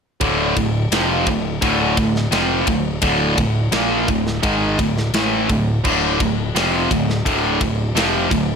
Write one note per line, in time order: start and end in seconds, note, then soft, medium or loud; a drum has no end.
0.21 0.54 D1 medium
0.21 0.55 D2 medium
0.21 0.55 A2 medium
0.21 0.56 D3 medium
0.21 kick loud
0.21 ride medium
0.56 0.89 D1 medium
0.56 0.84 D2 medium
0.56 0.84 A2 medium
0.56 kick medium
0.56 ride medium
0.91 1.24 F1 medium
0.91 1.26 F2 medium
0.91 1.26 C3 medium
0.91 1.26 F3 loud
0.91 snare loud
0.91 ride loud
1.27 1.60 D1 medium
1.27 1.55 D2 medium
1.27 1.55 A2 medium
1.27 kick medium
1.27 ride medium
1.62 1.95 D1 medium
1.62 1.95 D2 medium
1.62 1.96 A2 medium
1.62 1.97 D3 medium
1.62 kick loud
1.62 ride loud
1.97 2.30 D1 medium
1.97 2.25 D2 medium
1.97 2.26 A2 medium
1.97 kick medium
1.97 ride medium
2.16 snare soft
2.31 2.65 F1 medium
2.31 2.66 F2 medium
2.31 2.66 C3 medium
2.31 2.66 F3 loud
2.31 snare loud
2.31 ride loud
2.67 3.00 D1 medium
2.67 2.95 D2 medium
2.67 2.96 A2 medium
2.67 kick medium
2.67 ride medium
3.02 3.35 D1 medium
3.02 3.36 D2 medium
3.02 3.37 A2 medium
3.02 3.37 D3 medium
3.02 kick loud
3.02 ride medium
3.37 3.70 D1 medium
3.37 3.66 D2 medium
3.37 3.66 A2 medium
3.37 kick medium
3.37 ride medium
3.72 4.06 A#1 medium
3.72 4.07 A#2 medium
3.72 4.07 F3 medium
3.72 4.08 A#3 loud
3.72 snare loud
3.72 ride medium
4.08 4.41 D1 medium
4.08 4.37 D2 medium
4.08 4.37 A2 medium
4.08 kick medium
4.08 ride medium
4.27 snare soft
4.43 4.77 G#1 medium
4.43 4.78 G#2 medium
4.43 4.78 D#3 medium
4.43 4.78 G#3 loud
4.43 kick loud
4.43 ride medium
4.79 5.12 D1 medium
4.79 5.07 D2 soft
4.79 5.07 A2 medium
4.79 kick medium
4.79 ride medium
4.98 snare soft
5.14 5.47 A1 loud
5.14 5.49 A2 medium
5.14 5.49 E3 medium
5.14 5.49 A3 medium
5.14 snare loud
5.14 ride medium
5.49 5.82 D1 medium
5.49 5.78 D2 medium
5.49 5.78 A2 medium
5.49 kick medium
5.49 ride medium
5.85 6.17 D1 medium
5.85 6.18 D2 medium
5.85 6.19 A2 loud
5.85 6.19 D3 loud
5.85 kick loud
5.85 crash medium
6.19 6.53 D1 medium
6.19 6.48 D2 medium
6.19 6.48 A2 medium
6.19 kick medium
6.19 ride medium
6.55 6.88 F1 medium
6.55 6.90 F2 medium
6.55 6.90 C3 medium
6.55 6.90 F3 loud
6.55 snare loud
6.55 ride loud
6.91 7.23 D1 medium
6.91 7.19 D2 medium
6.91 7.19 A2 medium
6.91 kick medium
6.91 ride medium
7.10 snare soft
7.25 7.58 D1 medium
7.25 7.60 D2 medium
7.25 7.60 A2 medium
7.25 7.60 D3 loud
7.25 kick medium
7.25 ride medium
7.61 7.93 D1 medium
7.61 7.89 D2 medium
7.61 7.90 A2 medium
7.61 kick medium
7.61 ride medium
7.95 8.28 F1 medium
7.95 8.30 F2 medium
7.95 8.30 C3 loud
7.95 8.30 F3 medium
7.95 snare loud
7.95 ride loud
8.30 8.56 D1 medium
8.30 8.56 D2 medium
8.30 8.56 A2 medium
8.30 kick medium
8.30 ride medium